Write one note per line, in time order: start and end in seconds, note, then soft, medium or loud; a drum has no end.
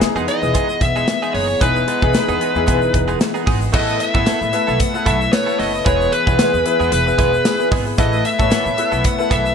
0.00 3.69 E3 medium
0.00 0.42 B3 medium
0.00 3.69 B3 medium
0.00 1.61 D#4 medium
0.00 0.43 E4 medium
0.00 0.43 G#4 medium
0.00 3.69 G#4 medium
0.00 muted upright bass stroke soft
0.00 snare loud
0.00 closed hi-hat medium
0.00 shaker medium
0.15 0.25 E2 medium
0.15 0.26 G#3 medium
0.15 0.27 B3 medium
0.15 0.27 D#4 medium
0.15 0.27 G#4 medium
0.15 shaker soft
0.28 0.41 G#3 medium
0.28 0.42 B3 medium
0.28 0.42 D#4 medium
0.28 0.41 G#4 medium
0.28 0.81 D#5 loud
0.28 closed hi-hat medium
0.42 0.52 E1 medium
0.42 1.27 B3 medium
0.42 1.27 E4 medium
0.42 1.27 G#4 medium
0.42 shaker soft
0.54 0.71 G#3 medium
0.54 0.69 B3 medium
0.54 0.68 D#4 medium
0.54 0.68 G#4 medium
0.54 kick medium
0.54 closed hi-hat medium
0.54 shaker medium
0.69 muted clean electric guitar stroke soft
0.69 shaker soft
0.81 1.01 E1 medium
0.81 1.34 E5 loud
0.81 muted clean electric guitar stroke soft
0.81 kick medium
0.81 closed hi-hat medium
0.96 1.06 G#3 medium
0.96 1.07 B3 medium
0.96 1.07 D#4 medium
0.96 1.07 G#4 medium
0.96 shaker soft
1.08 muted clean electric guitar stroke soft
1.08 snare loud
1.08 closed hi-hat medium
1.08 shaker medium
1.22 1.33 G#3 medium
1.22 1.33 B3 medium
1.22 1.34 D#4 medium
1.22 1.34 G#4 medium
1.22 shaker soft
1.34 1.54 F#1 medium
1.34 1.48 G#3 medium
1.34 1.48 B3 medium
1.34 1.48 D#4 medium
1.34 1.48 G#4 medium
1.34 1.62 C#5 medium
1.34 open hi-hat medium
1.49 muted clean electric guitar stroke soft
1.49 shaker soft
1.60 1.81 E1 loud
1.60 1.78 G#3 medium
1.60 1.93 B3 medium
1.60 1.78 B3 medium
1.60 1.93 D#4 medium
1.60 1.78 D#4 medium
1.60 1.94 E4 medium
1.60 1.94 G#4 medium
1.60 1.78 G#4 medium
1.60 3.16 B4 medium
1.60 kick loud
1.60 closed hi-hat medium
1.60 shaker medium
1.76 shaker soft
1.87 2.01 G#3 medium
1.87 2.01 B3 medium
1.87 2.01 D#4 medium
1.87 2.01 G#4 medium
1.87 closed hi-hat medium
2.02 2.11 E1 medium
2.02 2.13 G#3 medium
2.02 2.44 B3 medium
2.02 2.14 B3 medium
2.02 2.44 D#4 medium
2.02 2.13 D#4 medium
2.02 2.44 E4 medium
2.02 2.13 G#4 medium
2.02 2.44 G#4 medium
2.02 kick medium
2.02 shaker soft
2.14 muted upright bass stroke soft
2.14 muted clean electric guitar stroke soft
2.14 snare loud
2.14 closed hi-hat medium
2.14 shaker medium
2.28 2.38 E2 loud
2.28 2.39 G#3 medium
2.28 2.40 B3 medium
2.28 2.40 D#4 medium
2.28 2.40 G#4 medium
2.28 shaker soft
2.40 2.54 G#3 medium
2.40 2.54 B3 medium
2.40 2.54 D#4 medium
2.40 2.54 G#4 medium
2.40 closed hi-hat medium
2.55 2.69 E2 medium
2.55 3.40 B3 medium
2.55 3.40 D#4 medium
2.55 3.40 E4 medium
2.55 3.40 G#4 medium
2.55 shaker soft
2.67 2.88 E1 medium
2.67 2.84 G#3 medium
2.67 2.81 B3 medium
2.67 2.81 D#4 medium
2.67 2.80 G#4 medium
2.67 kick medium
2.67 closed hi-hat medium
2.67 shaker medium
2.82 muted clean electric guitar stroke soft
2.82 shaker medium
2.93 3.14 E1 medium
2.93 muted clean electric guitar stroke soft
2.93 kick medium
2.93 closed hi-hat medium
3.08 3.18 G#3 medium
3.08 3.19 B3 medium
3.08 3.19 D#4 medium
3.08 3.19 G#4 medium
3.08 shaker soft
3.20 muted clean electric guitar stroke soft
3.20 snare loud
3.20 closed hi-hat medium
3.20 shaker medium
3.34 3.45 G#3 soft
3.34 3.45 B3 medium
3.34 3.45 D#4 medium
3.34 3.46 G#4 medium
3.34 shaker soft
3.46 3.67 G#1 medium
3.46 3.63 G#3 medium
3.46 3.61 B3 medium
3.46 3.60 D#4 medium
3.46 3.60 G#4 loud
3.46 kick loud
3.46 open hi-hat medium
3.61 muted clean electric guitar stroke medium
3.61 shaker soft
3.72 3.94 A1 medium
3.72 3.98 A3 medium
3.72 5.84 A3 medium
3.72 4.06 B3 medium
3.72 3.98 B3 medium
3.72 3.98 E4 medium
3.72 4.06 E4 medium
3.72 5.84 E4 medium
3.72 3.98 A4 medium
3.72 4.06 A4 medium
3.72 5.84 B4 medium
3.72 4.06 B4 medium
3.72 4.00 D#5 loud
3.72 kick loud
3.72 crash medium
3.72 shaker medium
3.88 shaker soft
4.00 4.83 E5 loud
4.00 closed hi-hat medium
4.14 4.24 A1 medium
4.14 4.25 A3 medium
4.14 4.46 B3 medium
4.14 4.25 B3 medium
4.14 4.46 E4 medium
4.14 4.26 E4 medium
4.14 4.25 A4 medium
4.14 4.46 A4 medium
4.14 4.46 B4 medium
4.14 kick medium
4.14 shaker soft
4.26 4.43 A3 medium
4.26 4.41 B3 medium
4.26 4.40 E4 medium
4.26 4.40 A4 medium
4.26 muted upright bass stroke soft
4.26 snare loud
4.26 closed hi-hat medium
4.26 tambourine medium
4.26 shaker medium
4.41 4.50 A2 loud
4.41 muted clean electric guitar stroke medium
4.41 shaker medium
4.53 4.85 B3 medium
4.53 4.85 E4 medium
4.53 4.86 A4 medium
4.53 4.86 B4 medium
4.53 muted clean electric guitar stroke soft
4.53 closed hi-hat medium
4.53 shaker soft
4.67 4.77 B1 medium
4.67 4.79 A3 medium
4.67 4.79 B3 medium
4.67 4.79 E4 medium
4.67 4.78 A4 medium
4.67 shaker soft
4.80 5.05 F#5 loud
4.80 kick medium
4.80 closed hi-hat medium
4.80 shaker medium
4.94 5.25 B3 medium
4.94 5.26 E4 medium
4.94 5.26 A4 medium
4.94 5.26 B4 medium
4.94 muted clean electric guitar stroke soft
4.94 shaker medium
5.06 5.26 B1 medium
5.06 5.23 A3 medium
5.06 5.20 B3 medium
5.06 5.20 E4 medium
5.06 5.19 A4 loud
5.06 5.31 E5 loud
5.06 kick medium
5.06 closed hi-hat medium
5.06 shaker soft
5.20 muted clean electric guitar stroke soft
5.20 shaker soft
5.32 5.76 B3 medium
5.32 5.76 E4 medium
5.32 5.76 A4 medium
5.32 5.77 B4 medium
5.32 5.57 C#5 medium
5.32 muted clean electric guitar stroke soft
5.32 snare loud
5.32 closed hi-hat medium
5.32 tambourine medium
5.32 shaker medium
5.46 5.57 A3 medium
5.46 5.58 B3 medium
5.46 5.58 E4 medium
5.46 5.58 A4 medium
5.46 shaker soft
5.59 5.79 F#1 medium
5.59 5.76 A3 medium
5.59 5.73 B3 medium
5.59 5.73 E4 medium
5.59 5.72 A4 medium
5.59 5.85 D#5 loud
5.59 open hi-hat medium
5.73 muted clean electric guitar stroke medium
5.73 shaker soft
5.85 6.06 E1 loud
5.85 7.96 E3 medium
5.85 6.10 G#3 medium
5.85 6.18 B3 medium
5.85 6.10 B3 medium
5.85 7.96 B3 medium
5.85 6.18 E4 medium
5.85 6.11 E4 medium
5.85 7.96 G#4 medium
5.85 6.11 G#4 medium
5.85 6.19 G#4 medium
5.85 6.19 B4 medium
5.85 6.13 C#5 medium
5.85 kick loud
5.85 closed hi-hat medium
5.85 shaker medium
6.01 shaker soft
6.13 6.92 B4 medium
6.13 closed hi-hat medium
6.26 6.36 E1 loud
6.26 6.37 G#3 medium
6.26 6.58 B3 medium
6.26 6.37 B3 medium
6.26 6.38 E4 medium
6.26 6.58 E4 medium
6.26 6.38 G#4 medium
6.26 6.59 G#4 medium
6.26 6.59 B4 medium
6.26 kick medium
6.26 shaker soft
6.38 6.55 G#3 medium
6.38 6.53 B3 medium
6.38 6.52 E4 medium
6.38 6.52 G#4 loud
6.38 muted upright bass stroke soft
6.38 snare loud
6.38 closed hi-hat medium
6.38 tambourine medium
6.38 shaker medium
6.53 6.63 E2 medium
6.53 muted clean electric guitar stroke soft
6.53 shaker medium
6.65 6.98 B3 medium
6.65 6.98 E4 medium
6.65 6.98 G#4 medium
6.65 6.99 B4 medium
6.65 muted clean electric guitar stroke soft
6.65 closed hi-hat medium
6.65 shaker soft
6.79 6.89 E2 medium
6.79 6.91 G#3 medium
6.79 6.91 B3 medium
6.79 6.91 E4 medium
6.79 6.91 G#4 medium
6.79 shaker soft
6.92 7.12 E1 loud
6.92 7.68 B4 medium
6.92 closed hi-hat medium
6.92 shaker medium
7.06 7.38 B3 medium
7.06 7.38 E4 medium
7.06 7.38 G#4 medium
7.06 7.38 B4 medium
7.06 muted clean electric guitar stroke soft
7.06 shaker medium
7.18 7.38 E1 medium
7.18 7.35 G#3 medium
7.18 7.32 B3 medium
7.18 7.32 E4 medium
7.18 7.32 G#4 medium
7.18 kick medium
7.18 closed hi-hat medium
7.18 shaker soft
7.33 muted clean electric guitar stroke soft
7.33 shaker soft
7.45 7.89 B3 medium
7.45 7.89 E4 medium
7.45 7.89 G#4 medium
7.45 7.89 B4 medium
7.45 snare loud
7.45 closed hi-hat medium
7.45 tambourine medium
7.45 shaker medium
7.60 muted clean electric guitar stroke soft
7.60 shaker soft
7.71 7.92 G#1 medium
7.71 7.88 G#3 medium
7.71 7.86 B3 medium
7.71 7.86 E4 medium
7.71 7.85 G#4 loud
7.71 kick loud
7.71 open hi-hat medium
7.86 muted clean electric guitar stroke soft
7.86 shaker soft
7.98 8.18 A1 loud
7.98 8.23 E3 medium
7.98 9.55 A3 medium
7.98 8.30 B3 medium
7.98 8.23 B3 medium
7.98 8.31 E4 medium
7.98 9.55 E4 medium
7.98 8.23 E4 medium
7.98 8.31 A4 medium
7.98 8.23 A4 medium
7.98 9.55 B4 medium
7.98 8.31 B4 medium
7.98 8.26 D#5 loud
7.98 kick loud
7.98 closed hi-hat medium
7.98 shaker medium
8.13 shaker soft
8.25 9.07 E5 loud
8.25 muted clean electric guitar stroke soft
8.25 closed hi-hat medium
8.39 8.48 A1 medium
8.39 8.50 E3 medium
8.39 8.71 B3 medium
8.39 8.50 B3 medium
8.39 8.50 E4 medium
8.39 8.71 E4 medium
8.39 8.50 A4 medium
8.39 8.71 A4 medium
8.39 8.71 C#5 medium
8.39 kick medium
8.39 shaker soft
8.51 8.68 E3 medium
8.51 8.66 B3 medium
8.51 8.65 E4 medium
8.51 8.64 A4 medium
8.51 muted upright bass stroke soft
8.51 snare loud
8.51 closed hi-hat medium
8.51 tambourine medium
8.51 shaker medium
8.66 8.75 A2 medium
8.66 muted clean electric guitar stroke soft
8.66 shaker soft
8.77 9.10 B3 medium
8.77 9.10 E4 medium
8.77 9.10 A4 medium
8.77 9.11 B4 medium
8.77 muted clean electric guitar stroke soft
8.77 closed hi-hat medium
8.77 shaker soft
8.92 9.01 B1 medium
8.92 9.04 E3 soft
8.92 9.03 B3 medium
8.92 9.03 E4 medium
8.92 9.03 A4 medium
8.92 shaker medium
9.04 9.32 F#5 loud
9.04 kick medium
9.04 closed hi-hat medium
9.04 shaker medium
9.19 9.50 B3 medium
9.19 9.50 E4 medium
9.19 9.51 A4 medium
9.19 9.51 B4 medium
9.19 muted clean electric guitar stroke soft
9.19 shaker medium
9.30 9.51 B1 medium
9.30 9.47 E3 medium
9.30 9.45 B3 medium
9.30 9.45 E4 medium
9.30 9.44 A4 medium
9.30 9.55 E5 loud
9.30 kick medium
9.30 closed hi-hat medium
9.30 shaker soft
9.45 muted clean electric guitar stroke soft
9.45 shaker soft